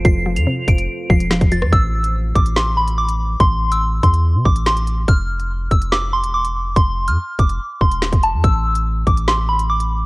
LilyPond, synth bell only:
\new Staff \with { instrumentName = "Synth bell" } { \time 4/4 \key a \minor \tempo 4 = 143 c''''8. f''''8. d''''8 r8 c''''4 a'''8 | e'''4 r8 d'''8 c'''8 b''8 d'''8 r8 | c'''8. e'''8. c'''8 r8 d'''8 c'''8 r8 | f'''4 r8 e'''8 d'''8 c'''8 d'''8 r8 |
c'''8. f'''8. d'''8 r8 c'''4 a''8 | e'''4 r8 d'''8 c'''8 b''8 d'''8 r8 | }